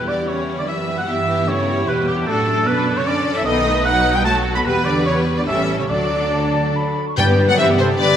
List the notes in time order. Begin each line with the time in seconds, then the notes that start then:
Already playing: E2 G3 B3 E4 G4
0.07 D3 D5
0.27 C#3 C#4 E4 C#5
0.57 D3 D5
0.67 F#2 E3 B3 G4 B4 E5
0.98 F#3 F#5
1.07 G2 E3 B3 E4 G4 E5
1.27 G4
1.47 C#3 A3 E4 C#5
1.67 G3
1.87 E2 B2 G3 B3 G4 B4
2.06 G2 G4
2.26 F#2 A2 A3 D4 F#4 A4
2.47 A4
2.65 B2 D4 A4 B4
2.95 C#3 C#5
3.05 D3 C#4 D5
3.35 E3 E5
3.45 B1 D#3 B3 D#4 A4 B4 D#5
3.65 A3
3.85 F#3 D#4 F#5
4.15 G3 G5
4.24 F#3 A3 F#4 A4 A5
4.55 B3 B5
4.65 E2 B2 G3 B3 G4 B4
4.85 D3 D5
5.05 C#3 C#5
5.36 D3 D5
5.46 A1 E3 G3 C#4 G4 A4 E5
5.78 C#3 C#5
5.89 D2 D3 F#3 D4 F#4 A4 D5
6.33 A5
6.75 B5
7.08 C#6
7.17 G2 G3 D4 B4 D5 G5
7.28 B3 G4 D5
7.39 G3 D4 B4
7.48 F#3 B3 G4 D5 F#5
7.58 G2 E3 G3 D4 G4 B4 C5 E5
7.69 B3 G4 D5
7.78 C3 G3 D4 A4 B4 C5
7.89 B3 G4 D5
7.99 G2 D3 G3 D4 B4 D5
8.10 B3 G4 D5